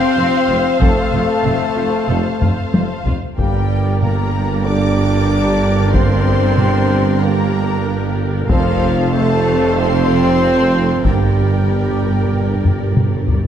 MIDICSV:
0, 0, Header, 1, 13, 480
1, 0, Start_track
1, 0, Key_signature, -2, "minor"
1, 0, Tempo, 638978
1, 614, Time_signature, 4, 2, 24, 8
1, 10119, End_track
2, 0, Start_track
2, 0, Title_t, "Violin section"
2, 0, Program_c, 0, 48
2, 0, Note_on_c, 0, 84, 95
2, 602, Note_off_c, 0, 84, 0
2, 619, Note_on_c, 0, 81, 77
2, 2265, Note_off_c, 0, 81, 0
2, 2537, Note_on_c, 0, 79, 68
2, 2984, Note_off_c, 0, 79, 0
2, 3018, Note_on_c, 0, 82, 68
2, 3485, Note_off_c, 0, 82, 0
2, 3493, Note_on_c, 0, 86, 86
2, 4434, Note_off_c, 0, 86, 0
2, 4446, Note_on_c, 0, 84, 82
2, 5390, Note_off_c, 0, 84, 0
2, 5407, Note_on_c, 0, 82, 74
2, 6131, Note_off_c, 0, 82, 0
2, 6379, Note_on_c, 0, 77, 81
2, 6826, Note_off_c, 0, 77, 0
2, 6866, Note_on_c, 0, 81, 76
2, 7340, Note_off_c, 0, 81, 0
2, 7353, Note_on_c, 0, 84, 90
2, 8285, Note_off_c, 0, 84, 0
2, 8307, Note_on_c, 0, 79, 59
2, 9712, Note_off_c, 0, 79, 0
2, 10119, End_track
3, 0, Start_track
3, 0, Title_t, "Violin section"
3, 0, Program_c, 1, 48
3, 0, Note_on_c, 1, 72, 101
3, 0, Note_on_c, 1, 77, 98
3, 2348, Note_off_c, 1, 72, 0
3, 2352, Note_off_c, 1, 77, 0
3, 2525, Note_on_c, 1, 70, 62
3, 2525, Note_on_c, 1, 74, 65
3, 6340, Note_off_c, 1, 70, 0
3, 6340, Note_off_c, 1, 74, 0
3, 6380, Note_on_c, 1, 72, 78
3, 6381, Note_on_c, 1, 77, 73
3, 8268, Note_off_c, 1, 72, 0
3, 8268, Note_off_c, 1, 77, 0
3, 8297, Note_on_c, 1, 74, 52
3, 8301, Note_on_c, 1, 70, 52
3, 10035, Note_off_c, 1, 74, 0
3, 10037, Note_off_c, 1, 70, 0
3, 10119, End_track
4, 0, Start_track
4, 0, Title_t, "Trumpet"
4, 0, Program_c, 2, 56
4, 0, Note_on_c, 2, 72, 94
4, 594, Note_off_c, 2, 72, 0
4, 620, Note_on_c, 2, 69, 78
4, 2265, Note_off_c, 2, 69, 0
4, 2537, Note_on_c, 2, 67, 69
4, 3011, Note_on_c, 2, 70, 69
4, 3022, Note_off_c, 2, 67, 0
4, 3493, Note_on_c, 2, 74, 86
4, 3504, Note_off_c, 2, 70, 0
4, 4454, Note_on_c, 2, 72, 80
4, 4466, Note_off_c, 2, 74, 0
4, 5414, Note_off_c, 2, 72, 0
4, 5419, Note_on_c, 2, 70, 77
4, 6122, Note_off_c, 2, 70, 0
4, 6382, Note_on_c, 2, 65, 85
4, 6828, Note_off_c, 2, 65, 0
4, 6857, Note_on_c, 2, 69, 82
4, 7326, Note_off_c, 2, 69, 0
4, 7332, Note_on_c, 2, 72, 100
4, 8274, Note_off_c, 2, 72, 0
4, 8295, Note_on_c, 2, 67, 62
4, 9706, Note_off_c, 2, 67, 0
4, 10119, End_track
5, 0, Start_track
5, 0, Title_t, "Woodwind section"
5, 0, Program_c, 3, 71
5, 0, Note_on_c, 3, 53, 104
5, 0, Note_on_c, 3, 60, 115
5, 0, Note_on_c, 3, 72, 111
5, 0, Note_on_c, 3, 77, 107
5, 2299, Note_off_c, 3, 60, 0
5, 2300, Note_off_c, 3, 53, 0
5, 2304, Note_off_c, 3, 72, 0
5, 2304, Note_off_c, 3, 77, 0
5, 2538, Note_on_c, 3, 62, 69
5, 2540, Note_on_c, 3, 70, 67
5, 2541, Note_on_c, 3, 58, 69
5, 2544, Note_on_c, 3, 79, 69
5, 6367, Note_on_c, 3, 81, 86
5, 6372, Note_on_c, 3, 60, 86
5, 6374, Note_on_c, 3, 65, 83
5, 6374, Note_on_c, 3, 72, 77
5, 6377, Note_off_c, 3, 62, 0
5, 6377, Note_off_c, 3, 70, 0
5, 6378, Note_off_c, 3, 58, 0
5, 6379, Note_off_c, 3, 79, 0
5, 8289, Note_on_c, 3, 70, 55
5, 8291, Note_off_c, 3, 81, 0
5, 8291, Note_on_c, 3, 79, 59
5, 8292, Note_on_c, 3, 62, 57
5, 8294, Note_off_c, 3, 60, 0
5, 8295, Note_off_c, 3, 65, 0
5, 8295, Note_off_c, 3, 72, 0
5, 8296, Note_on_c, 3, 67, 62
5, 9972, Note_off_c, 3, 70, 0
5, 9973, Note_off_c, 3, 62, 0
5, 9973, Note_off_c, 3, 79, 0
5, 9975, Note_off_c, 3, 67, 0
5, 10119, End_track
6, 0, Start_track
6, 0, Title_t, "Viola section"
6, 0, Program_c, 4, 48
6, 137, Note_on_c, 4, 60, 72
6, 197, Note_off_c, 4, 60, 0
6, 377, Note_on_c, 4, 65, 59
6, 437, Note_off_c, 4, 65, 0
6, 604, Note_on_c, 4, 69, 73
6, 832, Note_off_c, 4, 69, 0
6, 850, Note_on_c, 4, 65, 54
6, 910, Note_off_c, 4, 65, 0
6, 1081, Note_on_c, 4, 60, 50
6, 1141, Note_off_c, 4, 60, 0
6, 1312, Note_on_c, 4, 65, 46
6, 1372, Note_off_c, 4, 65, 0
6, 1550, Note_on_c, 4, 69, 54
6, 1783, Note_off_c, 4, 69, 0
6, 1803, Note_on_c, 4, 65, 44
6, 1863, Note_off_c, 4, 65, 0
6, 2049, Note_on_c, 4, 60, 48
6, 2109, Note_off_c, 4, 60, 0
6, 2295, Note_on_c, 4, 65, 48
6, 2355, Note_off_c, 4, 65, 0
6, 2531, Note_on_c, 4, 67, 59
6, 2532, Note_on_c, 4, 70, 55
6, 6343, Note_off_c, 4, 67, 0
6, 6380, Note_on_c, 4, 69, 65
6, 6824, Note_off_c, 4, 70, 0
6, 6844, Note_off_c, 4, 69, 0
6, 6853, Note_on_c, 4, 69, 66
6, 8294, Note_off_c, 4, 69, 0
6, 8298, Note_on_c, 4, 67, 45
6, 8301, Note_on_c, 4, 70, 49
6, 10036, Note_off_c, 4, 67, 0
6, 10067, Note_off_c, 4, 70, 0
6, 10119, End_track
7, 0, Start_track
7, 0, Title_t, "French horn section"
7, 0, Program_c, 5, 60
7, 0, Note_on_c, 5, 60, 113
7, 610, Note_on_c, 5, 57, 98
7, 611, Note_off_c, 5, 60, 0
7, 2260, Note_off_c, 5, 57, 0
7, 2547, Note_on_c, 5, 55, 83
7, 2990, Note_off_c, 5, 55, 0
7, 3013, Note_on_c, 5, 58, 82
7, 3483, Note_off_c, 5, 58, 0
7, 3503, Note_on_c, 5, 62, 95
7, 4447, Note_on_c, 5, 60, 100
7, 4458, Note_off_c, 5, 62, 0
7, 5410, Note_off_c, 5, 60, 0
7, 5416, Note_on_c, 5, 58, 89
7, 6135, Note_off_c, 5, 58, 0
7, 6379, Note_on_c, 5, 53, 101
7, 6827, Note_off_c, 5, 53, 0
7, 6857, Note_on_c, 5, 57, 106
7, 7336, Note_off_c, 5, 57, 0
7, 7357, Note_on_c, 5, 60, 119
7, 8301, Note_on_c, 5, 55, 74
7, 8306, Note_off_c, 5, 60, 0
7, 9709, Note_off_c, 5, 55, 0
7, 10119, End_track
8, 0, Start_track
8, 0, Title_t, "Trombone section"
8, 0, Program_c, 6, 61
8, 606, Note_on_c, 6, 48, 65
8, 608, Note_on_c, 6, 60, 70
8, 776, Note_off_c, 6, 48, 0
8, 777, Note_off_c, 6, 60, 0
8, 1577, Note_on_c, 6, 60, 58
8, 1579, Note_on_c, 6, 48, 60
8, 1743, Note_off_c, 6, 60, 0
8, 1744, Note_off_c, 6, 48, 0
8, 2546, Note_on_c, 6, 50, 62
8, 2549, Note_on_c, 6, 58, 64
8, 2709, Note_off_c, 6, 50, 0
8, 2710, Note_off_c, 6, 58, 0
8, 3492, Note_on_c, 6, 50, 60
8, 3504, Note_on_c, 6, 58, 57
8, 3660, Note_off_c, 6, 50, 0
8, 3667, Note_off_c, 6, 58, 0
8, 4455, Note_on_c, 6, 58, 67
8, 4456, Note_on_c, 6, 50, 63
8, 4622, Note_off_c, 6, 50, 0
8, 4622, Note_off_c, 6, 58, 0
8, 5419, Note_on_c, 6, 58, 63
8, 5424, Note_on_c, 6, 50, 67
8, 5584, Note_off_c, 6, 58, 0
8, 5587, Note_off_c, 6, 50, 0
8, 6379, Note_on_c, 6, 53, 71
8, 6382, Note_on_c, 6, 60, 73
8, 6544, Note_off_c, 6, 53, 0
8, 6546, Note_off_c, 6, 60, 0
8, 7326, Note_on_c, 6, 57, 71
8, 7333, Note_on_c, 6, 53, 70
8, 7496, Note_off_c, 6, 57, 0
8, 7501, Note_off_c, 6, 53, 0
8, 8304, Note_on_c, 6, 58, 53
8, 8306, Note_on_c, 6, 50, 52
8, 8468, Note_off_c, 6, 58, 0
8, 8470, Note_off_c, 6, 50, 0
8, 9251, Note_on_c, 6, 50, 41
8, 9252, Note_on_c, 6, 58, 42
8, 9420, Note_off_c, 6, 50, 0
8, 9420, Note_off_c, 6, 58, 0
8, 10119, End_track
9, 0, Start_track
9, 0, Title_t, "Timpani"
9, 0, Program_c, 7, 47
9, 8307, Note_on_c, 7, 43, 28
9, 8350, Note_off_c, 7, 43, 0
9, 8359, Note_on_c, 7, 43, 30
9, 8408, Note_off_c, 7, 43, 0
9, 8420, Note_on_c, 7, 43, 28
9, 8466, Note_off_c, 7, 43, 0
9, 8476, Note_on_c, 7, 43, 27
9, 8523, Note_off_c, 7, 43, 0
9, 8706, Note_on_c, 7, 43, 32
9, 8740, Note_off_c, 7, 43, 0
9, 8865, Note_on_c, 7, 43, 32
9, 8915, Note_off_c, 7, 43, 0
9, 8982, Note_on_c, 7, 43, 36
9, 9020, Note_off_c, 7, 43, 0
9, 9029, Note_on_c, 7, 43, 36
9, 9081, Note_off_c, 7, 43, 0
9, 9092, Note_on_c, 7, 43, 39
9, 9134, Note_off_c, 7, 43, 0
9, 9143, Note_on_c, 7, 43, 36
9, 9184, Note_off_c, 7, 43, 0
9, 9193, Note_on_c, 7, 43, 42
9, 9240, Note_off_c, 7, 43, 0
9, 9249, Note_on_c, 7, 43, 44
9, 9296, Note_off_c, 7, 43, 0
9, 9305, Note_on_c, 7, 43, 42
9, 9353, Note_off_c, 7, 43, 0
9, 9362, Note_on_c, 7, 43, 41
9, 9411, Note_off_c, 7, 43, 0
9, 9420, Note_on_c, 7, 43, 47
9, 9461, Note_off_c, 7, 43, 0
9, 9470, Note_on_c, 7, 43, 49
9, 9517, Note_off_c, 7, 43, 0
9, 9526, Note_on_c, 7, 43, 48
9, 9580, Note_off_c, 7, 43, 0
9, 9589, Note_on_c, 7, 43, 54
9, 9639, Note_off_c, 7, 43, 0
9, 9648, Note_on_c, 7, 43, 52
9, 9694, Note_off_c, 7, 43, 0
9, 9703, Note_on_c, 7, 43, 53
9, 9747, Note_off_c, 7, 43, 0
9, 9756, Note_on_c, 7, 43, 59
9, 9807, Note_off_c, 7, 43, 0
9, 9816, Note_on_c, 7, 43, 57
9, 9864, Note_off_c, 7, 43, 0
9, 9873, Note_on_c, 7, 43, 57
9, 9923, Note_off_c, 7, 43, 0
9, 9932, Note_on_c, 7, 43, 60
9, 9979, Note_off_c, 7, 43, 0
9, 9988, Note_on_c, 7, 43, 64
9, 10032, Note_off_c, 7, 43, 0
9, 10041, Note_on_c, 7, 43, 67
9, 10087, Note_off_c, 7, 43, 0
9, 10119, End_track
10, 0, Start_track
10, 0, Title_t, "Cello section"
10, 0, Program_c, 8, 48
10, 138, Note_on_c, 8, 41, 65
10, 198, Note_off_c, 8, 41, 0
10, 375, Note_on_c, 8, 41, 60
10, 435, Note_off_c, 8, 41, 0
10, 619, Note_on_c, 8, 41, 72
10, 679, Note_off_c, 8, 41, 0
10, 857, Note_on_c, 8, 41, 57
10, 917, Note_off_c, 8, 41, 0
10, 1094, Note_on_c, 8, 41, 49
10, 1154, Note_off_c, 8, 41, 0
10, 1324, Note_on_c, 8, 41, 48
10, 1384, Note_off_c, 8, 41, 0
10, 1569, Note_on_c, 8, 41, 65
10, 1630, Note_off_c, 8, 41, 0
10, 1810, Note_on_c, 8, 41, 47
10, 1870, Note_off_c, 8, 41, 0
10, 2053, Note_on_c, 8, 41, 46
10, 2113, Note_off_c, 8, 41, 0
10, 2302, Note_on_c, 8, 41, 45
10, 2362, Note_off_c, 8, 41, 0
10, 2539, Note_on_c, 8, 43, 61
10, 6347, Note_off_c, 8, 43, 0
10, 6374, Note_on_c, 8, 41, 80
10, 8265, Note_off_c, 8, 41, 0
10, 8300, Note_on_c, 8, 43, 52
10, 10037, Note_off_c, 8, 43, 0
10, 10119, End_track
11, 0, Start_track
11, 0, Title_t, "Double bass section"
11, 0, Program_c, 10, 48
11, 133, Note_on_c, 10, 29, 67
11, 193, Note_off_c, 10, 29, 0
11, 375, Note_on_c, 10, 29, 61
11, 435, Note_off_c, 10, 29, 0
11, 604, Note_on_c, 10, 29, 72
11, 664, Note_off_c, 10, 29, 0
11, 850, Note_on_c, 10, 29, 52
11, 910, Note_off_c, 10, 29, 0
11, 1085, Note_on_c, 10, 29, 49
11, 1145, Note_off_c, 10, 29, 0
11, 1333, Note_on_c, 10, 29, 47
11, 1393, Note_off_c, 10, 29, 0
11, 1568, Note_on_c, 10, 29, 68
11, 1628, Note_off_c, 10, 29, 0
11, 1815, Note_on_c, 10, 29, 49
11, 1876, Note_off_c, 10, 29, 0
11, 2050, Note_on_c, 10, 29, 47
11, 2110, Note_off_c, 10, 29, 0
11, 2286, Note_on_c, 10, 29, 44
11, 2346, Note_off_c, 10, 29, 0
11, 2526, Note_on_c, 10, 31, 60
11, 6340, Note_off_c, 10, 31, 0
11, 6379, Note_on_c, 10, 29, 74
11, 8267, Note_off_c, 10, 29, 0
11, 8301, Note_on_c, 10, 31, 52
11, 10037, Note_off_c, 10, 31, 0
11, 10119, End_track
12, 0, Start_track
12, 0, Title_t, "Tuba"
12, 0, Program_c, 11, 58
12, 131, Note_on_c, 11, 29, 65
12, 227, Note_off_c, 11, 29, 0
12, 379, Note_on_c, 11, 29, 59
12, 474, Note_off_c, 11, 29, 0
12, 613, Note_on_c, 11, 29, 80
12, 709, Note_off_c, 11, 29, 0
12, 861, Note_on_c, 11, 29, 49
12, 955, Note_off_c, 11, 29, 0
12, 1095, Note_on_c, 11, 29, 52
12, 1191, Note_off_c, 11, 29, 0
12, 1338, Note_on_c, 11, 29, 46
12, 1433, Note_off_c, 11, 29, 0
12, 1579, Note_on_c, 11, 29, 70
12, 1674, Note_off_c, 11, 29, 0
12, 1815, Note_on_c, 11, 29, 47
12, 1910, Note_off_c, 11, 29, 0
12, 2059, Note_on_c, 11, 29, 42
12, 2154, Note_off_c, 11, 29, 0
12, 2295, Note_on_c, 11, 29, 43
12, 2390, Note_off_c, 11, 29, 0
12, 2533, Note_on_c, 11, 31, 59
12, 6344, Note_off_c, 11, 31, 0
12, 6381, Note_on_c, 11, 29, 77
12, 8165, Note_off_c, 11, 29, 0
12, 8293, Note_on_c, 11, 31, 53
12, 10033, Note_off_c, 11, 31, 0
12, 10119, End_track
13, 0, Start_track
13, 0, Title_t, "Taiko and cinematic ensemble drums"
13, 615, Note_on_c, 9, 41, 98
13, 690, Note_off_c, 9, 41, 0
13, 1096, Note_on_c, 9, 47, 58
13, 1172, Note_off_c, 9, 47, 0
13, 1815, Note_on_c, 9, 45, 82
13, 1890, Note_off_c, 9, 45, 0
13, 2058, Note_on_c, 9, 48, 87
13, 2133, Note_off_c, 9, 48, 0
13, 2300, Note_on_c, 9, 43, 81
13, 2375, Note_off_c, 9, 43, 0
13, 2543, Note_on_c, 9, 41, 90
13, 2618, Note_off_c, 9, 41, 0
13, 3024, Note_on_c, 9, 47, 57
13, 3099, Note_off_c, 9, 47, 0
13, 4462, Note_on_c, 9, 41, 93
13, 4537, Note_off_c, 9, 41, 0
13, 4938, Note_on_c, 9, 47, 55
13, 5013, Note_off_c, 9, 47, 0
13, 6382, Note_on_c, 9, 41, 93
13, 6457, Note_off_c, 9, 41, 0
13, 8301, Note_on_c, 9, 41, 87
13, 8376, Note_off_c, 9, 41, 0
13, 9502, Note_on_c, 9, 45, 70
13, 9577, Note_off_c, 9, 45, 0
13, 9741, Note_on_c, 9, 47, 72
13, 9816, Note_off_c, 9, 47, 0
13, 9975, Note_on_c, 9, 43, 72
13, 10050, Note_off_c, 9, 43, 0
13, 10119, End_track
0, 0, End_of_file